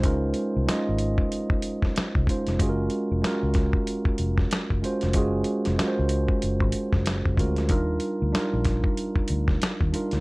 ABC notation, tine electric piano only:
X:1
M:4/4
L:1/8
Q:"Swing 16ths" 1/4=94
K:Gblyd
V:1 name="Tine electric piano"
[A,DEFB]2 [A,DEFe]4 z [A,DEFc] | [A,DFGAB]2 [A,DFGB]4 z [A,DFGc] | [A,DFGA]2 [A,DFGBc]4 z [A,DFGB] | [=G,=DEFB]2 [G,DEFB]4 z [G,DEFB] |]